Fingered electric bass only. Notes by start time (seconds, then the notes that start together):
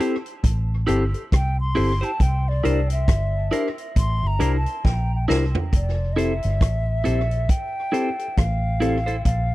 0.45 A1
0.89 G1
1.33 C2
1.78 G1
2.21 C2
2.65 C2
3.09 G1
3.97 A1
4.23 G1
4.41 C2
4.85 A#1
5.30 C2
5.73 F1
6.45 G1
6.62 A1
7.07 A#1
8.38 A1
9.26 A#1